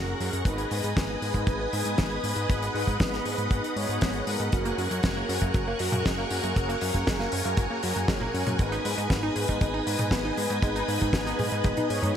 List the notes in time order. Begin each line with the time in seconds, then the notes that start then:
Already playing: F#1 C#4 F#4 G#4 A#4 F#5 A#5 C#6
0.20 F#2 C#4 F#4 G#4 A#4, open hi-hat
0.33 F#2, closed hi-hat
0.45 G#1 B3 D#4 G#4 B4 D#5 G#5 D#6, kick, closed hi-hat
0.58 closed hi-hat
0.71 G#2, open hi-hat
0.84 G#2, closed hi-hat
0.97 G#1, kick, snare, closed hi-hat
1.22 G#2, open hi-hat
1.34 G#2, kick, closed hi-hat
1.47 G#1, kick, closed hi-hat
1.73 G#2 B3 D#4 G#4 B4, open hi-hat
1.85 G#2, closed hi-hat
1.98 G#1, kick, snare, closed hi-hat
2.24 G#2 B3 D#4 G#4 B4, open hi-hat
2.36 G#2, closed hi-hat
2.49 G#1 B3 D#4 G#4 B4 F#5, kick, closed hi-hat
2.62 closed hi-hat
2.75 G#2, open hi-hat
2.87 G#2, kick, closed hi-hat
3.00 G#1, kick, snare, closed hi-hat
3.13 snare
3.25 G#2, open hi-hat
3.38 G#2, closed hi-hat
3.51 G#1, kick, closed hi-hat
3.64 closed hi-hat
3.76 G#2 B3 D#4 G#4 C#5, open hi-hat
3.89 G#2, closed hi-hat
4.01 G#1, kick, snare, closed hi-hat
4.13 closed hi-hat
4.27 G#2 B3 D#4 G#4 A#4, open hi-hat
4.40 G#2, closed hi-hat
4.52 F#1 F#3 C#4 F#4 G#4 A#4 G#5 C#6, kick, closed hi-hat
4.65 A#3, closed hi-hat
4.78 F#2 F#4, open hi-hat
4.91 F#2 A#3, closed hi-hat
5.03 F#1 G#3, kick, snare, closed hi-hat
5.17 A#3
5.29 F#2 C#4, open hi-hat
5.41 F#2 A#3, kick, closed hi-hat
5.54 F#1 F#3, kick, closed hi-hat
5.68 A#3
5.79 F#2 C#4 F#4 G#4 A#4, open hi-hat
5.92 F#2 A#3, closed hi-hat, high tom
6.06 F#1 G#3, kick, snare, closed hi-hat
6.18 A#3
6.30 F#2 C#4 F#4 G#4 A#4, open hi-hat
6.44 F#2 A#3, closed hi-hat
6.56 F#1 F#3 C#4 F#4 G#4 A#4, kick, closed hi-hat
6.69 A#3, closed hi-hat
6.81 F#2 F#4, open hi-hat
6.94 F#2 A#3, kick, closed hi-hat
7.07 F#1 G#3, kick, snare, closed hi-hat
7.19 A#3, snare
7.32 F#2 C#4, open hi-hat
7.45 F#2 A#3, closed hi-hat
7.57 F#1 F#3, kick, closed hi-hat
7.71 A#3
7.83 F#2 C#4 F#4 G#4 A#4, open hi-hat
7.96 F#2 A#3, closed hi-hat
8.08 F#1 G#3, kick, snare, closed hi-hat
8.21 A#3, high tom
8.34 F#2 C#4 F#4 G#4 A#4, open hi-hat
8.47 F#2 A#3, closed hi-hat, high tom
8.59 G#1 G#3 B3 D#4 G#4 B4 D#5 D#6, kick, closed hi-hat
8.72 D#4, closed hi-hat
8.85 G#2 B4, open hi-hat
8.98 G#2 D#4, closed hi-hat
9.10 G#1 B3, kick, snare, closed hi-hat
9.23 D#4
9.36 G#2 G#4, open hi-hat
9.48 G#2 D#4, kick, closed hi-hat
9.61 G#1 G#3, kick, closed hi-hat
9.74 D#4
9.87 G#2 B3 D#4 G#4 B4, open hi-hat
9.99 G#2 D#4, closed hi-hat, high tom
10.11 G#1 B3, kick, snare, closed hi-hat
10.25 D#4
10.37 G#2 B3 D#4 G#4 B4, open hi-hat
10.50 G#2 D#4, closed hi-hat
10.62 G#1 G#3 B3 D#4 G#4 B4, kick, closed hi-hat
10.76 D#4, closed hi-hat
10.88 G#2 B4, open hi-hat
11.01 G#2 D#4, kick, closed hi-hat
11.13 G#1 B3, kick, snare, closed hi-hat
11.26 D#4, snare, closed hi-hat
11.39 G#2 G#4, open hi-hat, high tom
11.52 G#2 D#4, closed hi-hat
11.64 G#1 G#3, kick, closed hi-hat, high tom
11.77 D#4, closed hi-hat, high tom
11.90 G#2 B3 D#4 G#4 C#5 G#5, open hi-hat
12.02 G#2 D#4, closed hi-hat, mid tom